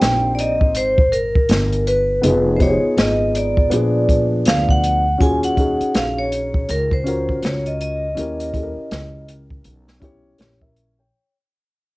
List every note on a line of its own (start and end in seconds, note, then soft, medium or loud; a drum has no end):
0.00 0.75 A#1 medium
0.00 0.94 C4 medium
0.00 0.95 D#4 medium
0.00 0.95 G4 medium
0.00 0.99 C5 medium
0.00 0.30 G5 loud
0.00 snare loud
0.00 closed hi-hat medium
0.35 0.40 D5 medium
0.35 closed hi-hat medium
0.40 0.77 D#5 medium
0.61 kick medium
0.75 1.46 G#1 loud
0.75 1.14 C5 medium
0.75 closed hi-hat medium
0.98 kick loud
1.12 1.83 A#4 medium
1.12 closed hi-hat medium
1.35 kick medium
1.49 2.20 G1 loud
1.49 snare loud
1.49 closed hi-hat medium
1.72 closed hi-hat soft
1.87 2.58 B4 medium
1.87 closed hi-hat medium
2.22 2.80 F1 loud
2.22 2.56 B3 medium
2.22 2.56 D#4 medium
2.22 2.57 F4 medium
2.22 2.58 G#4 medium
2.22 closed hi-hat medium
2.57 3.68 B3 medium
2.57 3.72 D#4 medium
2.57 2.61 C5 medium
2.57 kick medium
2.57 closed hi-hat medium
2.61 3.72 F4 medium
2.61 2.70 G4 medium
2.61 2.96 C#5 medium
2.69 3.72 G#4 medium
2.83 muted upright bass stroke soft
2.97 3.68 G#1 medium
2.97 3.37 D#5 medium
2.97 snare loud
2.97 closed hi-hat medium
3.35 4.80 D5 medium
3.35 closed hi-hat medium
3.57 kick medium
3.70 4.42 A#1 loud
3.70 5.03 F3 medium
3.70 5.01 B3 medium
3.70 5.02 D4 medium
3.70 5.03 G#4 medium
3.70 closed hi-hat medium
4.09 kick medium
4.09 closed hi-hat medium
4.45 5.16 D2 medium
4.45 4.70 F5 loud
4.45 snare loud
4.45 closed hi-hat medium
4.69 5.23 F#5 loud
4.69 kick medium
4.84 closed hi-hat medium
5.18 5.77 D#2 medium
5.18 5.52 C#4 medium
5.18 5.53 F4 medium
5.18 5.53 F#4 medium
5.18 5.32 G#5 loud
5.18 kick loud
5.18 closed hi-hat medium
5.22 5.54 G#4 medium
5.43 5.97 F#5 medium
5.43 closed hi-hat medium
5.56 6.87 C#4 medium
5.56 6.87 D#4 medium
5.56 6.88 F#4 medium
5.56 6.89 G#4 medium
5.56 kick medium
5.56 closed hi-hat medium
5.80 muted upright bass stroke soft
5.80 closed hi-hat soft
5.95 6.65 A#1 medium
5.95 6.19 F5 medium
5.95 snare medium
5.95 closed hi-hat medium
6.19 6.71 C#5 medium
6.32 closed hi-hat medium
6.54 kick medium
6.69 7.39 C#2 medium
6.69 6.93 A#4 medium
6.69 closed hi-hat medium
6.91 7.45 C5 medium
6.91 kick medium
7.04 8.04 C#4 medium
7.04 8.04 F4 medium
7.04 8.05 F#4 medium
7.04 8.05 A#4 medium
7.04 closed hi-hat medium
7.29 kick medium
7.43 8.13 C#2 medium
7.43 7.67 C#5 medium
7.43 snare loud
7.43 closed hi-hat medium
7.66 7.80 D#5 medium
7.66 closed hi-hat soft
7.81 9.25 D#5 medium
7.81 closed hi-hat medium
8.15 8.74 D#2 medium
8.15 8.49 C#4 medium
8.15 8.49 E4 medium
8.15 8.50 G4 medium
8.15 8.51 A#4 medium
8.15 closed hi-hat medium
8.40 closed hi-hat medium
8.52 9.83 C#4 medium
8.52 9.84 E4 medium
8.52 9.85 G4 soft
8.52 8.63 A4 medium
8.52 kick medium
8.52 closed hi-hat medium
8.63 9.89 A#4 medium
8.77 muted upright bass stroke soft
8.91 9.61 C#2 medium
8.91 snare medium
8.91 closed hi-hat medium
9.28 closed hi-hat medium
9.50 kick medium
9.64 10.35 B1 medium
9.64 closed hi-hat medium
9.88 snare soft
10.00 11.00 C#4 medium
10.00 11.00 E4 medium
10.00 10.38 G4 medium
10.00 10.38 C#5 medium
10.00 kick medium
10.00 closed hi-hat medium
10.38 11.10 A#1 medium
10.38 10.61 C#5 medium
10.38 snare loud
10.38 closed hi-hat medium
10.62 10.97 A#4 medium
10.62 10.97 E5 medium
10.62 kick medium
10.76 closed hi-hat medium
10.99 11.34 C#5 soft
10.99 11.34 G5 soft